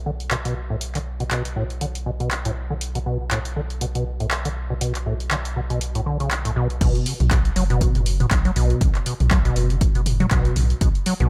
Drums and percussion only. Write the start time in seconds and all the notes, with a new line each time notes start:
0.20 closed hi-hat
0.31 clap, closed hi-hat
0.45 closed hi-hat
0.81 closed hi-hat
0.95 clap, closed hi-hat
1.20 closed hi-hat
1.31 clap, closed hi-hat
1.45 closed hi-hat
1.70 closed hi-hat
1.81 closed hi-hat
1.95 closed hi-hat
2.20 closed hi-hat
2.31 clap, closed hi-hat
2.45 closed hi-hat
2.81 closed hi-hat
2.95 closed hi-hat
3.31 clap, closed hi-hat
3.45 closed hi-hat
3.70 closed hi-hat
3.81 closed hi-hat
3.95 closed hi-hat
4.20 closed hi-hat
4.31 clap, closed hi-hat
4.45 closed hi-hat
4.81 closed hi-hat
4.95 clap, closed hi-hat
5.20 closed hi-hat
5.31 clap, closed hi-hat
5.45 closed hi-hat
5.70 closed hi-hat
5.81 closed hi-hat
5.95 closed hi-hat
6.20 closed hi-hat
6.31 clap, closed hi-hat
6.45 closed hi-hat
6.70 closed hi-hat
6.81 kick, closed hi-hat, crash
6.95 closed hi-hat
7.06 open hi-hat
7.20 closed hi-hat, mid tom
7.31 kick, clap, closed hi-hat
7.45 closed hi-hat
7.56 open hi-hat
7.70 closed hi-hat
7.81 kick, closed hi-hat
7.95 closed hi-hat, mid tom
8.06 open hi-hat
8.20 closed hi-hat, mid tom
8.31 kick, clap, closed hi-hat
8.45 closed hi-hat
8.56 open hi-hat
8.70 closed hi-hat
8.81 kick, closed hi-hat
8.95 clap, closed hi-hat
9.06 open hi-hat
9.20 closed hi-hat, mid tom
9.31 kick, clap, closed hi-hat
9.45 closed hi-hat
9.56 open hi-hat
9.70 closed hi-hat
9.81 kick, closed hi-hat
9.95 closed hi-hat
10.06 mid tom, open hi-hat
10.20 closed hi-hat, mid tom
10.31 kick, clap, closed hi-hat
10.45 closed hi-hat
10.56 mid tom, open hi-hat
10.70 closed hi-hat
10.81 kick, closed hi-hat
10.95 closed hi-hat
11.06 open hi-hat
11.20 closed hi-hat, mid tom